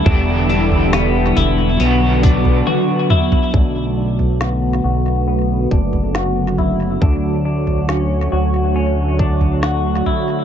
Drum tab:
TB |--x-x-x-x-x-----|----------------|----------------|
SD |----o-----------|----o-------o---|----o-------o---|
T1 |------------o---|----------------|----------------|
T2 |--------------o-|----------------|----------------|
FT |o--o--o----o---o|o--o-------o--o-|o--o-------o--o-|
BD |o---------o-----|o---------o-----|o---------o-----|